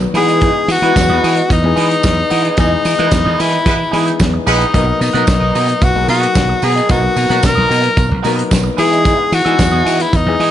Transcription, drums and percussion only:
0.15 open hi-hat, tambourine
0.29 closed hi-hat
0.41 kick, closed hi-hat
0.68 open hi-hat, tambourine
0.83 closed hi-hat
0.96 kick, snare, closed hi-hat, tambourine
1.24 open hi-hat, tambourine
1.37 closed hi-hat
1.50 kick, closed hi-hat, tambourine
1.77 open hi-hat, tambourine
1.91 closed hi-hat
2.03 kick, snare, closed hi-hat, tambourine
2.30 open hi-hat, tambourine
2.45 closed hi-hat
2.57 kick, closed hi-hat, tambourine
2.85 open hi-hat, tambourine
2.99 closed hi-hat
3.11 kick, snare, closed hi-hat, tambourine
3.40 open hi-hat, tambourine
3.52 closed hi-hat
3.66 kick, closed hi-hat, tambourine
3.93 open hi-hat
4.08 closed hi-hat
4.20 kick, snare, closed hi-hat, tambourine
4.47 open hi-hat, tambourine
4.62 closed hi-hat
4.74 kick, closed hi-hat, tambourine
5.01 open hi-hat, tambourine
5.15 closed hi-hat
5.27 kick, snare, closed hi-hat, tambourine
5.55 open hi-hat, tambourine
5.69 closed hi-hat
5.82 kick, closed hi-hat, tambourine
6.08 open hi-hat, tambourine
6.23 closed hi-hat
6.35 kick, snare, closed hi-hat, tambourine
6.62 open hi-hat, tambourine
6.77 closed hi-hat
6.89 kick, closed hi-hat, tambourine
7.16 open hi-hat, tambourine
7.31 closed hi-hat
7.43 kick, snare, closed hi-hat, tambourine
7.71 open hi-hat, tambourine
7.84 closed hi-hat
7.97 kick, closed hi-hat, tambourine
8.24 open hi-hat, tambourine
8.39 closed hi-hat
8.51 kick, snare, closed hi-hat, tambourine
8.78 open hi-hat, tambourine
8.93 closed hi-hat
9.05 kick, closed hi-hat, tambourine
9.32 open hi-hat, tambourine
9.46 closed hi-hat
9.59 kick, snare, closed hi-hat, tambourine
9.86 open hi-hat, tambourine
10.00 closed hi-hat
10.13 kick, closed hi-hat, tambourine
10.40 open hi-hat

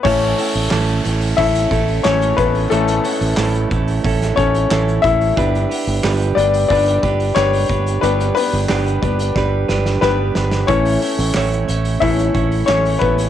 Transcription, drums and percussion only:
0.05 kick, crash
0.22 open hi-hat
0.38 hi-hat pedal, open hi-hat
0.55 hi-hat pedal, open hi-hat
0.71 snare, clap, hi-hat pedal, open hi-hat
0.88 hi-hat pedal
1.05 hi-hat pedal, open hi-hat
1.21 open hi-hat
1.38 kick, hi-hat pedal, open hi-hat
1.55 hi-hat pedal
1.71 kick, hi-hat pedal, open hi-hat
1.88 open hi-hat
2.05 snare, clap, hi-hat pedal, open hi-hat
2.21 hi-hat pedal
2.38 kick, hi-hat pedal, open hi-hat
2.55 open hi-hat
2.71 hi-hat pedal, open hi-hat
2.87 hi-hat pedal
3.04 hi-hat pedal, open hi-hat
3.21 open hi-hat
3.37 snare, clap, hi-hat pedal, open hi-hat
3.54 hi-hat pedal
3.71 kick, hi-hat pedal, open hi-hat
3.88 open hi-hat
4.04 kick, hi-hat pedal, open hi-hat
4.21 snare, hi-hat pedal, open hi-hat
4.37 kick, hi-hat pedal, open hi-hat
4.54 hi-hat pedal, open hi-hat
4.71 snare, clap, hi-hat pedal, open hi-hat
4.88 hi-hat pedal
5.04 kick, hi-hat pedal, open hi-hat
5.21 open hi-hat
5.37 kick, hi-hat pedal, open hi-hat
5.55 hi-hat pedal
5.71 hi-hat pedal, open hi-hat
5.88 open hi-hat
6.04 snare, clap, hi-hat pedal, open hi-hat
6.21 hi-hat pedal
6.38 hi-hat pedal, open hi-hat
6.54 open hi-hat
6.70 kick, hi-hat pedal, open hi-hat
6.87 hi-hat pedal
7.03 kick, hi-hat pedal, open hi-hat
7.20 open hi-hat
7.36 snare, clap, hi-hat pedal, open hi-hat
7.53 hi-hat pedal, open hi-hat
7.69 kick, hi-hat pedal, open hi-hat
7.86 hi-hat pedal, open hi-hat
8.03 hi-hat pedal, open hi-hat
8.20 hi-hat pedal
8.36 hi-hat pedal, open hi-hat
8.54 open hi-hat
8.69 snare, clap, hi-hat pedal, open hi-hat
8.86 hi-hat pedal, open hi-hat
9.03 kick, hi-hat pedal, open hi-hat
9.19 hi-hat pedal, open hi-hat
9.36 kick, snare
9.69 snare
9.86 snare
10.02 snare
10.35 snare
10.52 snare
10.68 kick, hi-hat pedal, open hi-hat
10.85 hi-hat pedal, open hi-hat
11.02 hi-hat pedal, open hi-hat
11.18 hi-hat pedal, open hi-hat
11.34 snare, clap, hi-hat pedal, open hi-hat
11.52 hi-hat pedal
11.68 hi-hat pedal, open hi-hat
11.85 open hi-hat
12.01 kick, hi-hat pedal, open hi-hat
12.18 hi-hat pedal
12.35 kick, hi-hat pedal, open hi-hat
12.52 open hi-hat
12.68 snare, clap, hi-hat pedal, open hi-hat
12.85 hi-hat pedal, open hi-hat
13.01 kick, hi-hat pedal, open hi-hat
13.18 hi-hat pedal, open hi-hat

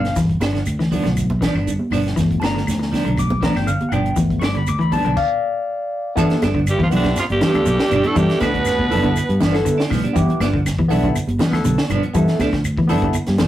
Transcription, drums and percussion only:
0.05 snare, closed hi-hat
0.16 kick, snare, closed hi-hat, shekere
0.30 kick, closed hi-hat
0.41 snare, closed hi-hat, high conga, claves, shekere
0.55 snare, closed hi-hat
0.66 closed hi-hat, claves, shekere
0.80 snare, closed hi-hat
0.92 kick, open hi-hat, high conga, low conga, shekere
1.05 snare, closed hi-hat
1.17 kick, closed hi-hat, claves, shekere
1.30 kick, high conga
1.42 kick, snare, closed hi-hat, shekere
1.56 claves
1.66 closed hi-hat, low conga, shekere
1.79 high conga
1.91 open hi-hat, low conga, claves, shekere
2.07 snare, closed hi-hat
2.17 kick, snare, closed hi-hat, shekere
2.31 kick, closed hi-hat
2.42 snare, closed hi-hat, high conga, claves, shekere
2.57 snare
2.67 snare, closed hi-hat, claves, shekere
2.82 snare
2.93 snare, open hi-hat, high conga, low conga, shekere
3.07 closed hi-hat
3.17 kick, closed hi-hat, high conga, claves, shekere
3.30 kick, high conga
3.42 kick, snare, closed hi-hat, low conga, shekere
3.56 snare, claves
3.68 closed hi-hat, shekere
3.81 closed hi-hat, high conga
3.92 closed hi-hat, low conga, claves, shekere
4.06 closed hi-hat
4.16 kick, closed hi-hat, shekere
4.30 kick, closed hi-hat
4.42 snare, closed hi-hat, high conga, claves, shekere
4.55 closed hi-hat, high conga
4.67 closed hi-hat, claves, shekere
4.81 closed hi-hat
4.92 kick, open hi-hat, high conga, low conga, shekere
5.06 closed hi-hat
5.17 kick, crash
6.17 kick, closed hi-hat, shekere
6.30 snare, closed hi-hat, high conga
6.42 snare, closed hi-hat, high conga, claves, shekere
6.55 kick
6.67 closed hi-hat, claves, shekere
6.80 kick, high conga
6.91 open hi-hat, low conga, shekere
7.04 kick, snare, closed hi-hat, high conga
7.16 snare, closed hi-hat, claves, shekere
7.30 closed hi-hat, high conga
7.41 snare, closed hi-hat, high conga, low conga, shekere
7.54 closed hi-hat, claves
7.66 closed hi-hat, high conga, shekere
7.79 snare, closed hi-hat
7.91 closed hi-hat, low conga, claves, shekere
8.04 closed hi-hat, high conga
8.16 kick, closed hi-hat, low conga, shekere
8.30 snare, closed hi-hat
8.41 kick, snare, closed hi-hat, high conga, claves, shekere
8.54 kick, closed hi-hat
8.65 snare, closed hi-hat, claves, shekere
8.79 kick, high conga
8.91 open hi-hat, low conga, shekere
9.04 kick, closed hi-hat, high conga
9.16 closed hi-hat, claves, shekere
9.30 closed hi-hat
9.41 snare, closed hi-hat, high conga, low conga, shekere
9.54 snare, closed hi-hat, claves
9.66 closed hi-hat, high conga, shekere
9.80 snare, closed hi-hat
9.91 kick, snare, open hi-hat, low conga, claves, shekere
10.04 closed hi-hat, high conga
10.15 kick, closed hi-hat, low conga, shekere
10.29 closed hi-hat, high conga
10.41 snare, closed hi-hat, high conga, claves, shekere
10.54 kick
10.66 snare, closed hi-hat, claves, shekere
10.79 kick, high conga
10.90 open hi-hat, low conga, shekere
11.04 kick, closed hi-hat, high conga
11.16 closed hi-hat, claves, shekere
11.28 closed hi-hat, high conga
11.39 snare, closed hi-hat, high conga, low conga, shekere
11.53 snare, closed hi-hat, claves
11.64 closed hi-hat, high conga, shekere
11.78 snare, closed hi-hat
11.89 closed hi-hat, low conga, claves, shekere
12.03 closed hi-hat
12.15 kick, closed hi-hat, shekere
12.28 snare, closed hi-hat
12.40 kick, snare, closed hi-hat, high conga, claves, shekere
12.52 kick, snare, closed hi-hat
12.65 closed hi-hat, claves, shekere
12.77 kick, high conga
12.89 open hi-hat, low conga, shekere
13.02 kick, closed hi-hat, high conga
13.13 closed hi-hat, claves, shekere
13.26 snare, closed hi-hat, high conga
13.38 snare, closed hi-hat, high conga, low conga, shekere

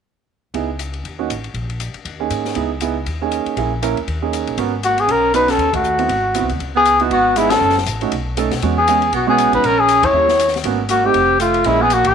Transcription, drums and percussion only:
0.54 ride
0.79 hi-hat pedal, ride
0.94 ride
1.05 ride
1.30 hi-hat pedal, ride
1.44 ride
1.54 ride
1.70 ride
1.80 hi-hat pedal, ride
1.94 ride
2.05 ride
2.30 hi-hat pedal, ride
2.45 snare
2.55 ride
2.80 hi-hat pedal, ride
3.06 ride
3.32 hi-hat pedal, ride
3.46 ride
3.57 ride
3.83 hi-hat pedal, ride
3.97 ride
4.08 ride
4.33 hi-hat pedal, ride
4.47 ride
4.58 ride
4.83 hi-hat pedal, ride
4.98 ride
5.09 ride
5.34 hi-hat pedal, ride
5.48 snare, ride
5.59 ride
5.73 kick, ride
5.84 hi-hat pedal
5.99 ride
6.09 ride
6.35 hi-hat pedal, ride
6.49 ride
6.60 ride
6.85 hi-hat pedal, ride
7.00 ride
7.11 ride
7.36 hi-hat pedal, ride
7.50 snare, ride
7.70 snare
7.78 snare
7.86 hi-hat pedal, ride
8.01 ride
8.12 ride
8.37 hi-hat pedal, ride
8.51 snare, ride
8.62 ride
8.88 hi-hat pedal, ride
9.02 ride
9.13 ride
9.38 hi-hat pedal, ride
9.53 ride
9.64 ride
9.88 hi-hat pedal, ride
10.03 kick, ride
10.29 snare
10.39 hi-hat pedal, ride
10.48 snare
10.54 snare, ride
10.64 ride
10.89 hi-hat pedal, ride
11.14 ride
11.40 hi-hat pedal, ride
11.54 ride
11.64 ride
11.90 hi-hat pedal, ride
12.04 kick, ride

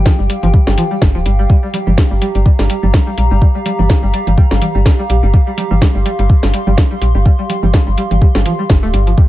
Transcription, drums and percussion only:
0.06 kick, snare
0.30 closed hi-hat
0.43 closed hi-hat, low conga
0.54 kick
0.67 snare
0.78 closed hi-hat, low conga
1.02 kick, snare
1.26 closed hi-hat
1.50 kick
1.74 closed hi-hat, high conga
1.87 low conga
1.98 kick, snare, high conga
2.11 high conga
2.22 closed hi-hat
2.35 closed hi-hat
2.46 kick
2.59 snare
2.70 closed hi-hat
2.83 high conga
2.94 kick, snare
3.18 closed hi-hat
3.42 kick
3.66 closed hi-hat, high conga
3.79 low conga
3.90 kick, snare, high conga
4.14 closed hi-hat
4.27 closed hi-hat, low conga
4.38 kick
4.51 snare
4.62 closed hi-hat, low conga
4.86 kick, snare
5.10 closed hi-hat
5.34 kick
5.58 closed hi-hat, high conga
5.71 low conga
5.82 kick, snare, high conga
5.95 high conga
6.06 closed hi-hat
6.19 closed hi-hat
6.30 kick
6.43 snare
6.54 closed hi-hat
6.67 high conga
6.78 kick, snare
7.02 closed hi-hat
7.26 kick
7.50 closed hi-hat, high conga
7.63 low conga
7.74 kick, snare
7.87 high conga
7.98 closed hi-hat
8.11 closed hi-hat, low conga
8.22 kick
8.35 snare
8.46 closed hi-hat, low conga
8.70 kick, snare
8.94 closed hi-hat
9.07 closed hi-hat
9.18 kick

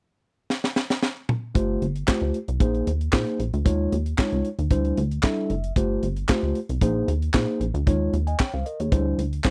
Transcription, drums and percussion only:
0.50 snare
0.64 snare
0.76 snare
0.90 snare
1.03 snare
1.29 mid tom
1.55 kick, closed hi-hat
1.82 closed hi-hat
1.96 closed hi-hat
2.08 kick, snare, clap
2.34 closed hi-hat
2.48 closed hi-hat
2.60 kick, closed hi-hat
2.75 closed hi-hat
2.87 closed hi-hat
3.01 closed hi-hat
3.12 kick, snare, clap
3.27 closed hi-hat
3.40 closed hi-hat
3.54 closed hi-hat
3.66 kick, closed hi-hat
3.92 closed hi-hat
4.06 closed hi-hat
4.18 kick, snare, clap
4.32 closed hi-hat
4.45 closed hi-hat
4.59 closed hi-hat
4.71 kick, closed hi-hat
4.85 closed hi-hat
4.97 closed hi-hat
5.11 closed hi-hat
5.23 kick, snare, clap
5.50 closed hi-hat
5.64 closed hi-hat
5.76 kick, closed hi-hat
6.03 closed hi-hat
6.17 closed hi-hat
6.29 kick, snare, clap
6.55 closed hi-hat
6.69 closed hi-hat
6.81 kick, closed hi-hat
7.08 closed hi-hat
7.22 closed hi-hat
7.34 kick, snare, clap
7.61 closed hi-hat
7.75 closed hi-hat
7.87 kick, closed hi-hat
8.14 closed hi-hat
8.27 closed hi-hat
8.39 kick, snare, clap
8.66 closed hi-hat
8.80 closed hi-hat
8.92 kick, closed hi-hat
9.19 closed hi-hat
9.33 closed hi-hat
9.44 kick, snare, clap

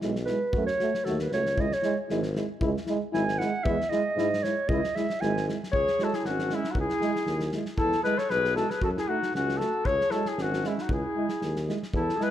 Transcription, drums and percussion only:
0.01 snare
0.16 snare
0.27 snare
0.53 kick
0.67 snare
0.80 snare
0.94 snare
1.06 snare
1.19 snare
1.32 snare
1.46 snare
1.58 kick
1.72 snare
1.83 snare
2.10 snare
2.23 snare
2.36 snare
2.61 kick
2.77 snare
2.87 snare
3.14 snare
3.28 snare
3.41 snare
3.66 kick
3.81 snare
3.92 snare
4.18 snare
4.33 snare
4.44 snare
4.69 kick
4.84 snare
4.96 snare
5.10 snare
5.22 snare
5.37 snare
5.49 snare
5.64 snare
5.73 kick
5.88 snare
5.99 snare
6.13 snare
6.25 snare
6.39 snare
6.50 snare
6.64 snare
6.75 kick
6.89 snare
7.01 snare
7.16 snare
7.26 snare
7.40 snare
7.52 snare
7.65 snare
7.78 kick
7.92 snare
8.04 snare
8.18 snare
8.30 snare
8.45 snare
8.56 snare
8.70 snare
8.82 kick
8.97 snare
9.23 snare
9.35 snare
9.49 snare
9.60 snare
9.85 kick
10.01 snare
10.11 snare
10.25 snare
10.38 snare
10.53 snare
10.64 snare
10.78 snare
10.89 kick
11.29 snare
11.42 snare
11.56 snare
11.69 snare
11.83 snare
11.94 kick
12.09 snare
12.21 snare

